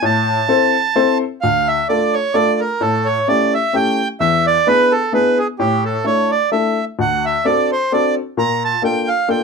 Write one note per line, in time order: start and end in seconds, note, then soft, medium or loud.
0.02 0.38 A2 medium
0.02 1.18 A5 medium
0.48 0.74 C4 medium
0.48 0.74 E4 medium
0.48 0.74 A4 medium
0.48 0.75 C5 medium
0.95 1.21 C4 medium
0.95 1.21 E4 medium
0.95 1.21 A4 medium
0.95 1.21 C5 medium
1.41 1.78 D2 medium
1.41 1.68 F5 medium
1.68 1.88 E5 medium
1.89 2.14 A3 soft
1.89 2.14 D4 soft
1.89 2.15 F4 soft
1.89 2.15 A4 medium
1.89 2.15 D5 medium
2.13 2.36 C#5 medium
2.34 2.60 A3 medium
2.34 2.60 D4 soft
2.34 2.60 F4 soft
2.34 2.60 A4 medium
2.34 2.60 D5 medium
2.60 2.82 A#4 medium
2.81 3.17 A2 medium
2.81 3.07 A4 medium
3.05 3.28 C#5 medium
3.28 3.53 A3 medium
3.28 3.53 C#4 medium
3.28 3.53 E4 soft
3.28 3.54 G4 medium
3.28 3.54 D5 medium
3.54 3.76 E5 medium
3.73 3.99 A3 medium
3.73 3.99 C#4 soft
3.73 3.99 E4 medium
3.73 3.99 G4 medium
3.73 4.08 G5 loud
4.20 4.55 E2 medium
4.20 4.46 E5 loud
4.47 4.68 D5 medium
4.67 4.91 B3 medium
4.67 4.91 D4 medium
4.67 4.92 E4 soft
4.67 4.92 G#4 medium
4.67 4.93 B4 loud
4.92 5.13 A4 medium
5.12 5.37 B3 medium
5.12 5.37 D4 medium
5.12 5.37 E4 medium
5.12 5.37 G#4 medium
5.12 5.38 B4 medium
5.38 5.47 G#4 medium
5.59 5.94 A2 medium
5.59 5.84 G4 medium
5.85 6.06 A4 medium
6.04 6.30 A3 medium
6.04 6.30 D4 soft
6.04 6.30 E4 soft
6.04 6.30 A4 medium
6.04 6.31 C#5 medium
6.31 6.50 D5 medium
6.52 6.77 A3 medium
6.52 6.77 D4 soft
6.52 6.77 E4 soft
6.52 6.77 A4 medium
6.52 6.85 E5 medium
6.99 7.34 D2 medium
6.99 7.25 F#5 medium
7.25 7.46 E5 medium
7.45 7.70 C4 soft
7.45 7.70 D4 soft
7.45 7.70 F#4 medium
7.45 7.70 A4 medium
7.45 7.71 D5 medium
7.72 7.93 C5 medium
7.92 8.16 C4 medium
7.92 8.17 D4 soft
7.92 8.17 F#4 soft
7.92 8.16 A4 medium
7.92 8.15 D5 medium
8.37 8.72 A#2 medium
8.37 8.63 A#5 loud
8.65 8.83 A5 medium
8.82 9.07 A#3 medium
8.82 9.08 D4 soft
8.82 9.07 F4 medium
8.82 9.08 A4 medium
8.82 9.09 G5 medium
9.08 9.29 F5 medium
9.28 9.43 A#3 medium
9.28 9.43 D4 medium
9.28 9.43 F4 soft
9.28 9.43 A4 medium
9.28 9.43 G5 medium